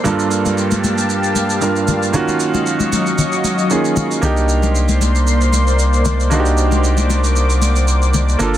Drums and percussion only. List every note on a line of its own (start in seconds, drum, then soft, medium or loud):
0.05 low conga medium
0.05 shaker medium
0.19 shaker soft
0.31 shaker medium
0.46 high conga medium
0.46 shaker medium
0.58 shaker medium
0.71 high conga medium
0.71 shaker medium
0.84 high conga medium
0.84 shaker medium
0.98 shaker medium
1.10 shaker medium
1.24 shaker medium
1.35 high conga medium
1.35 shaker loud
1.50 shaker medium
1.62 shaker medium
1.76 shaker soft
1.88 high conga medium
1.88 low conga medium
1.88 shaker medium
2.03 shaker medium
2.14 low conga medium
2.14 shaker medium
2.28 high conga soft
2.28 shaker medium
2.40 shaker medium
2.54 high conga medium
2.54 shaker medium
2.66 shaker medium
2.80 high conga medium
2.80 shaker medium
2.93 high conga medium
2.93 shaker medium
3.07 shaker medium
3.18 low conga medium
3.18 shaker medium
3.32 shaker medium
3.44 high conga medium
3.44 shaker medium
3.59 shaker medium
3.70 shaker medium
3.85 shaker soft
3.96 high conga medium
3.96 low conga medium
3.96 shaker medium
4.11 shaker medium
4.23 low conga medium
4.23 shaker medium
4.37 shaker medium
4.49 shaker medium
4.63 high conga medium
4.63 shaker medium
4.75 shaker medium
4.89 high conga medium
4.89 shaker medium
5.01 high conga medium
5.01 shaker medium
5.15 shaker medium
5.27 shaker medium
5.41 shaker medium
5.53 high conga medium
5.53 shaker medium
5.67 shaker medium
5.79 shaker medium
5.93 shaker soft
6.05 high conga medium
6.05 low conga medium
6.05 shaker medium
6.20 shaker medium
6.31 low conga medium
6.31 shaker medium
6.46 shaker soft
6.58 shaker medium
6.72 high conga medium
6.72 shaker medium
6.84 shaker medium
6.97 high conga medium
6.97 shaker medium
7.10 high conga medium
7.10 shaker medium
7.24 shaker medium
7.36 shaker medium
7.50 shaker medium
7.62 high conga medium
7.62 shaker loud
7.76 shaker medium
7.88 shaker medium
8.02 shaker medium
8.14 high conga medium
8.14 low conga medium
8.14 shaker medium
8.29 shaker medium
8.40 low conga medium
8.40 shaker medium
8.54 shaker medium